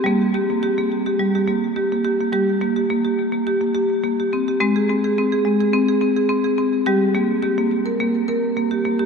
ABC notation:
X:1
M:4/4
L:1/16
Q:"Swing 16ths" 1/4=106
K:Gphr
V:1 name="Marimba"
B,2 G B, G B,2 G G, G B,2 G B, G B, | G2 B, G B, G2 B, G B, G2 B, G C G | C A C A C A A, A C A C A C A C2 | G2 B,2 G B,2 B B,2 B2 B, G B, G |]
V:2 name="Marimba" clef=bass
G,16 | G,16 | A,16 | G,16 |]